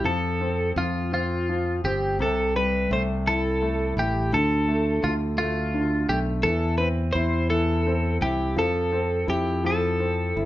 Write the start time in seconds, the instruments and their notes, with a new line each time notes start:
0.04 fingered electric bass F2, grand piano F3, clean electric guitar A4
0.41 grand piano C4
0.76 fingered electric bass F2, grand piano F3, clean electric guitar F4
1.13 grand piano C4, clean electric guitar F4
1.49 grand piano F3
1.84 fingered electric bass G1, grand piano C4, clean electric guitar G4
2.19 fingered electric bass C2, grand piano C3, clean electric guitar A4
2.56 grand piano G3, clean electric guitar B4
2.91 fingered electric bass C2, grand piano A3, clean electric guitar C5
3.28 grand piano E4, clean electric guitar A4
3.62 grand piano A3
3.97 fingered electric bass A1, grand piano E4, clean electric guitar G4
4.32 fingered electric bass D2, grand piano D3, clean electric guitar A4
4.68 grand piano A3
5.03 fingered electric bass D2, grand piano D3, clean electric guitar F4
5.38 grand piano A3, clean electric guitar F4
5.74 grand piano D3
6.09 fingered electric bass B1, grand piano A3, clean electric guitar G4
6.43 fingered electric bass E2, grand piano E3, clean electric guitar A4
6.78 grand piano C4, clean electric guitar B4
7.13 fingered electric bass E2, grand piano E4, clean electric guitar C5
7.50 grand piano E3, clean electric guitar A4
7.87 grand piano C4
8.21 fingered electric bass C2, grand piano E4, clean electric guitar G4
8.56 fingered electric bass F2, grand piano F3, clean electric guitar A4
8.92 grand piano C4
9.27 fingered electric bass F2, grand piano E4, clean electric guitar G4
9.64 grand piano F3, clean electric guitar A4
10.00 grand piano C4
10.36 fingered electric bass G1, grand piano E4